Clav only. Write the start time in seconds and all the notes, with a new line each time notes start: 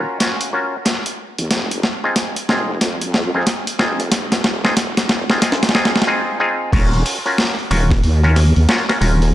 Already playing: C#4 F4 F#4 A#4
0.20 C#4 F4 F#4 C#5
0.53 C#4 F4 F#4 A#4
2.04 C4 D#4 F4 G#4
2.49 C4 D#4 F4 G#4
3.34 C4 D#4 F4 G#4
3.79 C4 D#4 F4 G#4
4.64 C4 D#4 F4 G#4
5.30 C4 D#4 F4 G#4
5.42 C4 D#4 F4 G#4
5.75 C4 D#4 F4 G#4
6.07 C4 D#4 F4 G#4
6.40 C4 D#4 F4 G#4
6.73 C#4 F4 F#4 A#4
7.26 C#4 F4 F#4 A#4
7.70 C#4 F4 F#4 A#4
8.23 C#4 F4 F#4 A#4
8.69 C#4 F4 F#4 A#4
8.89 C#4 F4 F#4 A#4
9.01 C#4 F4 F#4 A#4